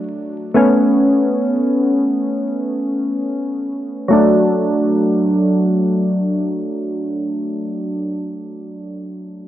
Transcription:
Already playing: F#3 A3 D4
0.54 A3 B3 C#4
4.08 F#3 A3
4.13 D4

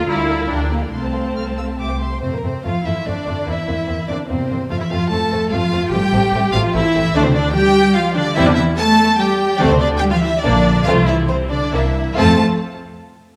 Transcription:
0.07 D2 G3 E4 F4 D5 A#5
0.18 A#4 F5
0.29 F4 D5 A#5
0.37 A#4 F5
0.49 D2 F3 D4 G4 F5 A#5
0.59 A#4 D5 G5
0.71 A#3 G4 F5 A#5
0.80 A#4 D5 G5
0.91 C2 A3 C4 A4 F5 C6
1.04 C5 A5
1.14 A4 F5 C6
1.25 C5 A5
1.36 C2 A4 F5 F6
1.46 C5 A5
1.58 A4 F5 E6
1.68 C5 A5
1.79 C2 G4 E5 D6
1.90 C5 G5
2.00 G4 E5 C6
2.11 C5 G5
2.21 F2 C3 A3 C4 C5
2.32 A#2 A#3 A#4
2.42 F2 C3 A3 C4 C5
2.64 F2 F3 A3 C4 F4 F5
2.84 F2 E3 A3 C4 E4 E5
3.05 F2 D3 A3 C4 D4 D5
3.26 F2 A3 C4
3.45 E2 E3 A#3 C4 E4 E5
3.68 E2 A#3 C4
3.87 E2 A#3 C4
4.08 E2 D3 A#3 C4 D4 D5
4.28 E2 C3 A#3 C4 C5
4.50 E2 A#3 C4
4.70 F2 F3 A3 C4 F4 F5
4.80 E3 E4 E5
4.90 F2 F3 A3 C4 F4 F5
5.10 F2 A3 C4 A4 A5
5.32 F2 A3 C4
5.51 F2 F3 A3 C4 F4 F5
5.72 F2 A3 C4
5.92 A1 G3 A3 C4 G4 G5
6.12 A1 A3 C4
6.33 A1 A3 C4
6.53 A1 F3 A3 C4 F4 F5
6.73 A1 E3 A3 C4 E4 E5
6.95 A1 A3 C4
7.14 D2 D3 A3 D4 D5
7.24 C3 C4 C5
7.34 D3 D4 D5
7.54 G3 G4 G5
7.95 F3 F4 F5
8.15 D3 D4 D5
8.36 E2 E3 G3 C4 E4 E5
8.46 D3 D4 D5
8.55 E3 E4 E5
8.77 A3 A4 A5
9.18 G3 G4 G5
9.59 D2 D3 A3 C4 D4 D5
9.69 C3 C4 C5
9.80 D3 D4 D5
9.98 G3 G4 G5
10.11 F3 F4 F5
10.19 E3 E4 E5
10.41 A#1 D3 A#3 D4 D5
10.83 C2 F3 A3 C4 F4 F5
11.07 E3 E4 E5
11.28 C3 C4 C5
11.50 D3 D4 D5
11.71 C2 E3 A#3 D4 E4 E5
12.16 F2 A3 C4 F4 A4 A5

